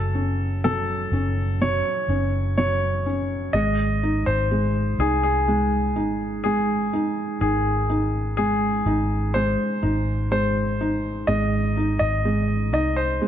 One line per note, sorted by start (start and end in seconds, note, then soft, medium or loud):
0.00 1.08 F#1 medium
0.00 0.63 F#3 soft
0.00 0.60 A4 medium
0.15 1.11 C#4 soft
0.64 1.60 F#3 soft
0.64 1.64 A4 medium
1.11 1.80 F#1 medium
1.11 2.08 C#4 soft
1.61 2.56 F#3 soft
1.61 2.56 C#5 medium
2.08 3.50 F#1 medium
2.08 3.05 C#4 soft
2.57 3.51 F#3 soft
2.57 3.57 C#5 medium
3.06 3.53 C#4 soft
3.53 4.22 G#1 medium
3.53 4.50 G#3 soft
3.53 4.22 D#5 medium
4.03 4.98 D#4 soft
4.26 4.95 G#1 medium
4.26 5.01 C5 medium
4.51 5.46 G#3 soft
4.98 5.96 C2 medium
4.98 5.94 D#4 soft
4.98 5.22 G#4 medium
5.23 6.40 G#4 medium
5.48 6.44 G#3 soft
5.96 6.89 G#1 medium
5.96 6.92 D#4 soft
6.44 8.34 G#3 soft
6.44 7.37 G#4 medium
6.93 7.88 D#4 soft
7.41 8.82 G#1 medium
7.41 11.24 D#3 medium
7.41 8.36 G#4 medium
7.89 8.85 D#4 soft
8.37 9.34 G#3 soft
8.37 9.37 G#4 medium
8.85 9.54 G#1 medium
8.85 9.81 D#4 medium
9.34 10.30 G#3 soft
9.34 10.30 C5 medium
9.83 11.24 G#1 medium
9.83 10.79 D#4 soft
10.31 11.27 G#3 soft
10.31 11.31 C5 medium
10.81 11.76 D#4 soft
11.27 11.97 G#1 medium
11.27 12.24 G#3 medium
11.27 11.98 D#5 medium
11.77 12.71 D#4 soft
11.99 12.73 G#1 medium
11.99 12.72 D#5 medium
12.25 13.20 G#3 soft
12.73 13.18 C2 medium
12.73 13.28 D#4 soft
12.73 12.98 D#5 medium
12.96 13.28 C5 medium
13.21 13.28 G#3 soft